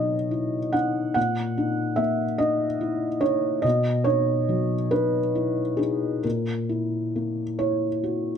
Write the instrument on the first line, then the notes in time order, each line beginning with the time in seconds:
felt piano
Already playing: B2 F#3 D#4 C#5 D#5
0.31 E4
0.73 D#4 F#5
1.14 A#2 F#5
1.58 D#4
1.96 A#3 E5
2.38 D#4 D#5
2.81 E4
3.21 D#4 C#5
3.62 B2 D#5
4.04 D#4 C#5
4.49 F#3
4.91 D#4 B4
5.35 E4
5.77 D#4 G#4
6.23 A#2 A#4
6.69 E4
7.16 A#3
7.59 E4 C#5
8.04 F#4